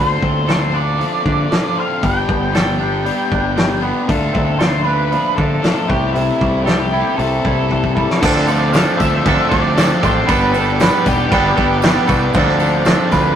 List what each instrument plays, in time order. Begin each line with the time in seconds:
Already playing: picked electric bass D2, overdriven electric guitar D3 D4 F4 A4
0.00 lead electric guitar C5
0.22 picked electric bass D2, clean electric guitar C4, kick
0.46 overdriven electric guitar D3 D4 F4 A4, snare, open hi-hat
0.51 lead electric guitar C5
0.72 overdriven electric guitar D4 F4 A4, lead electric guitar D5
0.97 overdriven electric guitar D3 D4 F4 A4, clean electric guitar F3, open hi-hat
1.25 picked electric bass D3, clean electric guitar D4, kick
1.50 overdriven electric guitar D3 D4 F4 A4, clean electric guitar F3, snare, open hi-hat
1.76 clean electric guitar C4, overdriven electric guitar D4 F4 A4
1.80 lead electric guitar F5
2.01 picked electric bass G1, overdriven electric guitar G2 D3 G3 B3 D4 G4, lead electric guitar G5, kick, open hi-hat
2.29 picked electric bass G1, clean electric guitar B3, kick
2.53 overdriven electric guitar G3 B3 D4 G4, clean electric guitar A4, lead electric guitar G5, snare, open hi-hat
2.79 overdriven electric guitar G3 B3 D4 G4
3.04 overdriven electric guitar G3 B3 D4 G4, open hi-hat
3.31 picked electric bass G1, clean electric guitar D4, kick
3.56 overdriven electric guitar G2 D3 G3 B3 D4 G4, snare, open hi-hat
3.82 overdriven electric guitar G3 B3 D4 G4
4.07 picked electric bass D2, overdriven electric guitar D3 A3 D4 F4, lead electric guitar A4, kick, open hi-hat
4.33 picked electric bass D2, clean electric guitar C4, kick
4.58 overdriven electric guitar D3 A3 D4 F4, clean electric guitar A4, lead electric guitar C5, snare, open hi-hat
4.84 overdriven electric guitar A3 D4 F4, lead electric guitar B4
5.10 overdriven electric guitar D3 A3 D4 F4, clean electric guitar F3, open hi-hat
5.36 picked electric bass D3, clean electric guitar D4, lead electric guitar A4, kick
5.62 overdriven electric guitar D3 A3 D4 F4, clean electric guitar F3, snare, open hi-hat
5.87 picked electric bass C2, overdriven electric guitar C3 E3 A3 C4 E4, lead electric guitar G4, kick
6.13 overdriven electric guitar C3 E3 A3 C4, lead electric guitar E4, open hi-hat
6.17 overdriven electric guitar E4
6.41 picked electric bass C2, clean electric guitar G3, kick
6.64 overdriven electric guitar E3 A3 C4, lead electric guitar G4, clean electric guitar A4, snare, open hi-hat
6.69 overdriven electric guitar E4
6.91 overdriven electric guitar A3 C4 E4
7.16 picked electric bass C2, overdriven electric guitar C3 E3 G3 C4 E4, lead electric guitar A4, open hi-hat
7.45 picked electric bass C2, clean electric guitar E4, kick
7.68 overdriven electric guitar C3 E3 G3 C4, kick
7.72 overdriven electric guitar E4
7.84 kick
7.94 overdriven electric guitar G3 C4 E4, lead electric guitar A4, kick
8.11 snare
8.21 picked electric bass D2, overdriven electric guitar D3 A3 D4 F4 A4, clean electric guitar F3 C4, transistor combo organ F4 C5 A5 D6, kick, crash, tambourine
8.36 snare
8.46 overdriven electric guitar F4 A4, lead electric guitar D5, tambourine, crash
8.50 clean electric guitar C4, overdriven electric guitar D4
8.72 clean electric guitar F3 C4, overdriven electric guitar A3 D4 F4 A4, lead electric guitar F5, snare, tambourine, crash
8.96 overdriven electric guitar D3 A3 D4 F4 A4, lead electric guitar E5, kick, tambourine, crash
9.00 picked electric bass D2
9.23 picked electric bass D2, clean electric guitar D3 F3, overdriven electric guitar A3 D4 F4 A4, kick, crash
9.27 clean electric guitar C4, tambourine
9.49 picked electric bass D2, overdriven electric guitar D3 A3 D4 F4 A4, lead electric guitar D5, kick, crash
9.54 clean electric guitar C4
9.75 clean electric guitar F3 C4, overdriven electric guitar A3 D4 F4 A4, snare, tambourine, crash
10.01 picked electric bass A1, overdriven electric guitar D4 F4 A4, lead electric guitar C5, kick, tambourine, crash
10.05 clean electric guitar C4
10.27 picked electric bass G1, overdriven electric guitar G3 B3 D4 B4, clean electric guitar A4, transistor combo organ B4 G5, kick, tambourine, crash
10.31 lead electric guitar B4
10.52 overdriven electric guitar B3 D4 B4, clean electric guitar A4, tambourine, crash
10.57 lead electric guitar A4
10.78 overdriven electric guitar G3 B3 D4 B4, snare, tambourine, crash
10.82 clean electric guitar A4, lead electric guitar B4
11.03 picked electric bass E1, overdriven electric guitar G3 B3 D4 B4, kick, snare, tambourine, crash
11.08 lead electric guitar G4
11.29 picked electric bass G1, overdriven electric guitar G3 B3 D4 B4, kick, tambourine, crash
11.34 clean electric guitar A4
11.55 picked electric bass G1, overdriven electric guitar B3 D4 B4, clean electric guitar A4, kick, crash
11.59 overdriven electric guitar G3
11.82 overdriven electric guitar G3 B3 D4 B4, clean electric guitar A4, snare, tambourine, crash
12.07 picked electric bass C2, overdriven electric guitar B3 B4, clean electric guitar A4, kick, tambourine, crash
12.12 overdriven electric guitar D4
12.33 picked electric bass D2, overdriven electric guitar D3 D4, clean electric guitar F3 C4, transistor combo organ C5 F5, kick, tambourine, crash
12.38 overdriven electric guitar F4 A4
12.48 snare
12.60 clean electric guitar C4, overdriven electric guitar D4 F4 A4, tambourine, crash
12.85 overdriven electric guitar D3 D4 F4 A4, clean electric guitar F3 C4, snare, tambourine, crash
13.11 picked electric bass D2, overdriven electric guitar D3 D4 F4 A4, lead electric guitar B4, kick, snare, tambourine, crash